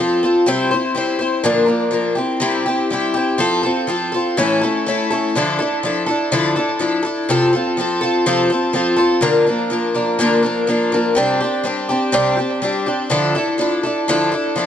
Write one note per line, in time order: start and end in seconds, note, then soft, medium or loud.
0.00 0.22 F3 medium
0.00 0.23 C4 medium
0.00 0.23 F4 medium
0.00 0.22 A4 medium
0.23 0.46 C4 soft
0.23 0.48 F4 soft
0.23 0.47 A4 soft
0.46 0.71 C3 medium
0.46 0.72 G3 medium
0.46 0.72 C4 medium
0.46 0.72 E4 medium
0.46 0.70 C5 medium
0.71 0.95 C4 soft
0.71 0.96 E4 soft
0.71 0.96 C5 medium
0.95 1.20 G3 medium
0.95 1.20 C4 medium
0.95 1.20 E4 medium
0.95 1.18 C5 medium
1.19 1.44 C4 soft
1.19 1.45 E4 soft
1.19 1.44 C5 medium
1.43 1.69 A#2 medium
1.43 1.69 D3 medium
1.43 1.68 F3 medium
1.43 1.67 A#3 medium
1.43 1.66 D4 loud
1.43 1.65 A#4 medium
1.66 1.90 F3 soft
1.66 1.90 A#3 medium
1.66 1.92 D4 medium
1.66 1.92 A#4 soft
1.91 2.16 F3 medium
1.91 2.17 A#3 medium
1.91 2.16 D4 medium
1.91 2.15 A#4 medium
2.15 2.40 C4 soft
2.15 2.41 E4 soft
2.15 2.41 G4 medium
2.40 2.65 C3 medium
2.40 2.66 G3 medium
2.40 2.66 C4 medium
2.40 2.66 E4 medium
2.40 2.65 G4 medium
2.66 2.90 C4 soft
2.66 2.92 E4 medium
2.66 2.91 G4 medium
2.90 3.15 G3 medium
2.90 3.16 C4 medium
2.90 3.15 E4 medium
2.90 3.13 G4 medium
3.14 3.38 C4 soft
3.14 3.40 E4 medium
3.14 3.39 G4 medium
3.38 3.63 F3 medium
3.38 3.63 C4 medium
3.38 3.63 F4 medium
3.38 3.62 A4 loud
3.63 3.87 C4 soft
3.63 3.88 F4 soft
3.63 3.88 A4 medium
3.87 4.12 F3 medium
3.87 4.13 C4 medium
3.87 4.13 F4 medium
3.87 4.11 A4 medium
4.12 4.38 C4 soft
4.12 4.38 F4 medium
4.12 4.37 A4 medium
4.37 4.61 A2 medium
4.37 4.61 E3 medium
4.37 4.62 A3 medium
4.37 4.62 C#4 medium
4.37 4.62 E4 medium
4.37 4.60 A4 medium
4.61 4.85 A3 soft
4.61 4.87 C#4 soft
4.61 4.86 E4 medium
4.61 4.86 A4 medium
4.86 5.10 A3 medium
4.86 5.11 C#4 medium
4.86 5.11 E4 medium
4.86 5.09 A4 medium
5.11 5.36 A3 soft
5.11 5.36 C#4 medium
5.11 5.35 E4 medium
5.11 5.34 A4 medium
5.35 5.59 D3 medium
5.35 5.59 F3 medium
5.35 5.60 D4 medium
5.35 5.59 E4 medium
5.35 5.58 A4 medium
5.59 5.84 D4 soft
5.59 5.83 E4 soft
5.59 5.83 A4 medium
5.83 6.07 F3 medium
5.83 6.08 D4 medium
5.83 6.07 E4 medium
5.83 6.05 A4 medium
6.06 6.31 D4 medium
6.06 6.32 E4 medium
6.06 6.31 A4 medium
6.32 6.56 D3 medium
6.32 6.56 F3 medium
6.32 6.56 D4 medium
6.32 6.56 E4 medium
6.32 6.55 A4 medium
6.56 6.79 D4 soft
6.56 6.80 E4 medium
6.56 6.80 A4 medium
6.79 7.04 F3 medium
6.79 7.04 D4 medium
6.79 7.04 E4 medium
6.79 7.01 A4 medium
7.03 7.29 D4 soft
7.03 7.29 E4 medium
7.03 7.28 A4 medium
7.29 7.53 C3 medium
7.29 7.53 F3 medium
7.29 7.53 C4 medium
7.29 7.54 F4 medium
7.29 7.52 A4 loud
7.53 7.77 C4 soft
7.53 7.78 F4 medium
7.53 7.77 A4 medium
7.77 8.01 F3 medium
7.77 8.02 C4 medium
7.77 8.02 F4 medium
7.77 8.00 A4 medium
8.01 8.25 C4 soft
8.01 8.26 F4 medium
8.01 8.25 A4 medium
8.26 8.50 C3 medium
8.26 8.50 F3 medium
8.26 8.50 C4 medium
8.26 8.51 F4 medium
8.26 8.49 A4 medium
8.50 8.73 C4 soft
8.50 8.74 F4 soft
8.50 8.74 A4 medium
8.73 8.98 F3 medium
8.73 8.98 C4 medium
8.73 8.97 F4 medium
8.73 8.95 A4 medium
8.96 9.22 C4 soft
8.96 9.22 F4 medium
8.96 9.22 A4 medium
9.21 9.46 A#2 medium
9.21 9.47 D3 medium
9.21 9.47 F3 medium
9.21 9.47 A#3 medium
9.21 9.46 D4 medium
9.21 9.45 A#4 medium
9.47 9.69 F3 soft
9.47 9.70 A#3 soft
9.47 9.71 D4 medium
9.47 9.71 A#4 medium
9.70 9.95 F3 medium
9.70 9.95 A#3 medium
9.70 9.94 D4 medium
9.70 9.93 A#4 medium
9.95 10.19 F3 soft
9.95 10.19 A#3 medium
9.95 10.20 D4 medium
9.95 10.19 A#4 medium
10.19 10.43 A#2 medium
10.19 10.44 D3 medium
10.19 10.44 F3 medium
10.19 10.44 A#3 loud
10.19 10.43 D4 medium
10.19 10.42 A#4 loud
10.43 10.66 F3 soft
10.43 10.67 A#3 soft
10.43 10.68 D4 medium
10.43 10.68 A#4 medium
10.67 10.92 F3 medium
10.67 10.93 A#3 medium
10.67 10.93 D4 medium
10.67 10.91 A#4 medium
10.92 11.16 F3 soft
10.92 11.16 A#3 medium
10.92 11.16 D4 medium
10.92 11.17 A#4 medium
11.15 11.40 C3 medium
11.15 11.41 G3 medium
11.15 11.41 C4 medium
11.15 11.41 D4 medium
11.15 11.39 G4 medium
11.40 11.64 C4 medium
11.40 11.64 D4 medium
11.40 11.65 G4 medium
11.64 11.89 G3 medium
11.64 11.89 C4 medium
11.64 11.89 D4 medium
11.64 11.88 G4 medium
11.89 12.12 C4 soft
11.89 12.13 D4 medium
11.89 12.13 G4 medium
12.12 12.37 C3 loud
12.12 12.38 G3 medium
12.12 12.38 C4 medium
12.12 12.37 D4 loud
12.12 12.36 G4 medium
12.37 12.62 C4 soft
12.37 12.62 D4 medium
12.37 12.62 G4 medium
12.62 12.86 G3 medium
12.62 12.87 C4 medium
12.62 12.87 D4 medium
12.62 12.85 G4 medium
12.86 13.11 C4 soft
12.86 13.10 D4 soft
12.86 13.11 G4 soft
13.10 13.35 D3 medium
13.10 13.35 F3 medium
13.10 13.35 D4 medium
13.10 13.35 E4 medium
13.10 13.34 A4 medium
13.35 13.58 D4 soft
13.35 13.60 E4 medium
13.35 13.59 A4 medium
13.58 13.83 F3 medium
13.58 13.84 D4 medium
13.58 13.83 E4 medium
13.58 13.82 A4 medium
13.83 14.08 D4 soft
13.83 14.08 E4 medium
13.83 14.08 A4 medium
14.08 14.32 D3 medium
14.08 14.33 F3 medium
14.08 14.33 D4 medium
14.08 14.33 E4 medium
14.08 14.31 A4 medium
14.32 14.56 D4 soft
14.32 14.57 E4 medium
14.32 14.56 A4 medium
14.56 14.66 F3 medium
14.56 14.66 D4 medium
14.56 14.66 E4 medium
14.56 14.66 A4 medium